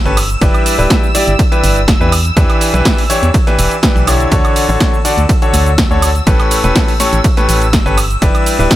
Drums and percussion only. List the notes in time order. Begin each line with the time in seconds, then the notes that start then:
0.06 snare, shaker
0.17 snare, open hi-hat, ride, high woodblock, shaker
0.30 closed hi-hat, shaker
0.41 kick, closed hi-hat, ride, shaker
0.54 closed hi-hat, high woodblock, shaker
0.66 open hi-hat, ride, shaker
0.79 shaker
0.90 kick, snare, closed hi-hat, ride, shaker
1.04 shaker
1.15 open hi-hat, ride, shaker
1.28 closed hi-hat, shaker
1.39 kick, closed hi-hat, ride, shaker
1.52 closed hi-hat, shaker
1.64 snare, open hi-hat, ride, shaker
1.76 closed hi-hat, shaker
1.88 kick, snare, closed hi-hat, ride, shaker
2.01 shaker
2.12 snare, open hi-hat, ride, high woodblock, shaker
2.25 closed hi-hat, shaker
2.37 kick, closed hi-hat, ride, shaker
2.50 snare, closed hi-hat, high woodblock, shaker
2.61 snare, open hi-hat, ride, shaker
2.74 closed hi-hat, ride, shaker
2.85 kick, snare, closed hi-hat, ride, shaker
2.98 open hi-hat, shaker
3.10 open hi-hat, ride, shaker
3.23 closed hi-hat, shaker
3.34 kick, closed hi-hat, ride, shaker
3.47 snare, closed hi-hat, shaker
3.59 open hi-hat, ride, shaker
3.71 closed hi-hat, ride, shaker
3.83 kick, snare, closed hi-hat, ride, shaker
3.96 snare, shaker
4.07 snare, open hi-hat, ride, high woodblock, shaker
4.20 closed hi-hat, shaker
4.32 kick, closed hi-hat, ride, shaker
4.45 closed hi-hat, high woodblock, shaker
4.56 open hi-hat, ride, shaker
4.69 shaker
4.80 kick, snare, closed hi-hat, ride, shaker
4.94 shaker
5.05 open hi-hat, ride, shaker
5.18 closed hi-hat, shaker
5.29 kick, closed hi-hat, ride, shaker
5.42 closed hi-hat, shaker
5.54 snare, open hi-hat, ride, shaker
5.66 closed hi-hat, shaker
5.78 kick, snare, closed hi-hat, ride, shaker
5.91 shaker
6.02 snare, open hi-hat, ride, high woodblock, shaker
6.15 closed hi-hat, shaker
6.27 kick, closed hi-hat, ride, shaker
6.40 snare, closed hi-hat, high woodblock, shaker
6.51 snare, open hi-hat, ride, shaker
6.64 closed hi-hat, ride, shaker
6.76 kick, snare, closed hi-hat, ride, shaker
6.88 open hi-hat, shaker
7.00 open hi-hat, ride, shaker
7.13 closed hi-hat, shaker
7.24 kick, closed hi-hat, ride, shaker
7.37 snare, closed hi-hat, shaker
7.49 open hi-hat, ride, shaker
7.62 closed hi-hat, ride, shaker
7.73 kick, snare, closed hi-hat, ride, shaker
7.86 snare, shaker
7.97 snare, open hi-hat, ride, high woodblock, shaker
8.10 closed hi-hat, shaker
8.22 kick, closed hi-hat, ride, shaker
8.35 closed hi-hat, high woodblock, shaker
8.46 open hi-hat, ride, shaker
8.60 shaker
8.71 kick, snare, closed hi-hat, ride, shaker